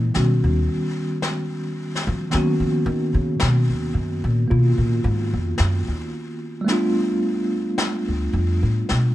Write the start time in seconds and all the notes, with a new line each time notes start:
Already playing: E3 G#3 A#3 C#4 E4
0.14 B2 D#3 G3 B3 C#4 F#4, brush sweep, snare
0.44 D#2
1.22 brush sweep, snare
1.95 snare
2.07 F3
2.30 D#3 F#3 A#3 B3, brush sweep, snare
2.34 C#4 F#4
2.60 F3
2.86 D#3
3.14 C#3
3.40 B2, brush sweep, snare
3.69 D#2
3.94 F#2
4.24 A#2
4.48 B2 A#3 F4, brush sweep
4.78 A#2
5.04 G#2
5.33 F2
5.58 F#2, brush sweep, snare
5.88 D#2
6.61 G3 A3
6.66 B3 D4, brush sweep, snare
6.72 F4
7.78 brush sweep, snare
8.08 D2
8.33 F2
8.63 A2
8.89 B2, brush sweep, snare